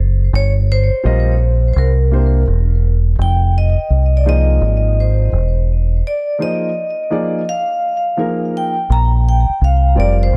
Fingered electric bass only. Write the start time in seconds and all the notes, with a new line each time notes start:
Already playing: F#1
0.33 G1
1.05 A#1
1.76 C2
2.48 E1
3.19 F1
3.78 muted fingered electric bass stroke
3.90 C2
4.62 G#1
5.32 E1
8.90 A#1
9.49 muted fingered electric bass stroke
9.61 C2
9.97 F1
10.33 A#1